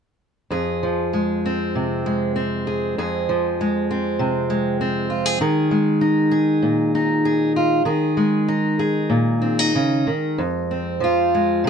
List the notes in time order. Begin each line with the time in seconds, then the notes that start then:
0.50 F2 G#4
0.83 F3
1.13 G#3
1.46 C4
1.75 C3
2.06 G#3
2.36 C4
2.67 G#4
2.98 F2 G#4
3.29 F3
3.61 G#3
3.91 C4
4.19 C3
4.50 G#3
4.81 C4
5.10 F4
5.26 G#4
5.41 D#3 G#4
5.71 G#3
6.01 D#4
6.31 G#4
6.62 A#2
6.95 D#4
7.25 G#4
7.56 F4
7.85 D#3 G#4
8.17 G#3
8.48 D#4
8.79 G#4
9.10 A#2
9.42 C4
9.59 D#4
9.75 C#3
10.07 D#3
10.38 F2
10.71 C4
11.00 F3 F4
11.35 G#3
11.64 C3